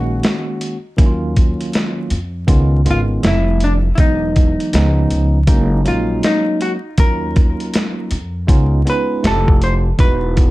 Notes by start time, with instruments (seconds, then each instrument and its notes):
Already playing: upright bass A#1, tine electric piano D#3 G#3 A#3 C#4 F#4, hollow-body jazz guitar F#4
0.23 snare, closed hi-hat
0.61 closed hi-hat
0.97 upright bass D#2, tine electric piano D#3 F#3 A#3 C#4 E4, kick, closed hi-hat
1.06 tine electric piano F4
1.36 kick, closed hi-hat
1.60 closed hi-hat
1.73 snare, closed hi-hat
2.10 upright bass F2, closed hi-hat
2.47 upright bass C#2, tine electric piano D#3 G#3 B3 C#4 F4, kick, closed hi-hat
2.85 upright bass G#1, tine electric piano D#3 G#3 B3 C#4 F4, closed hi-hat
2.91 hollow-body jazz guitar F4
3.23 upright bass F1, tine electric piano F3 G3 A3 C4 E4, snare, closed hi-hat
3.27 hollow-body jazz guitar E4
3.60 hollow-body jazz guitar D4, closed hi-hat
3.95 upright bass E1, tine electric piano E3 F#3 G#3, hollow-body jazz guitar E4, kick, closed hi-hat
4.00 tine electric piano B3 D#4, hollow-body jazz guitar D#4
4.36 kick, closed hi-hat
4.60 closed hi-hat
4.73 upright bass C#2, tine electric piano D#3 G#3 B3 C#4 D#4, snare, closed hi-hat
4.79 tine electric piano F3
5.10 upright bass C#2, closed hi-hat
5.47 upright bass F#1, tine electric piano F#3 G#3 A#3 C#4 D#4, kick, closed hi-hat
5.84 upright bass A#1, tine electric piano F#3 G#3 A#3 C#4 D#4, hollow-body jazz guitar F4, closed hi-hat
6.23 hollow-body jazz guitar D#4, snare, closed hi-hat
6.61 hollow-body jazz guitar F#4, closed hi-hat
6.97 upright bass D#2, tine electric piano F#3 A#3 C#4 D#4 F4, hollow-body jazz guitar A#4, kick, closed hi-hat
7.36 kick, closed hi-hat
7.60 closed hi-hat
7.74 snare, closed hi-hat
8.11 upright bass F2, closed hi-hat
8.47 upright bass C#2, tine electric piano G#3 B3 C#4 D#4 F4, kick, closed hi-hat
8.85 tine electric piano G#3 B3 C#4 D#4 F4, closed hi-hat
8.90 hollow-body jazz guitar B4
9.23 upright bass F1, tine electric piano A3 C4 E4 F4 G4, snare, closed hi-hat
9.27 hollow-body jazz guitar A4
9.48 kick
9.62 hollow-body jazz guitar C5, closed hi-hat
9.98 upright bass E1, tine electric piano G3 B3 D#4 E4 F#4, hollow-body jazz guitar B4, kick, closed hi-hat
10.05 tine electric piano G#3
10.37 kick, closed hi-hat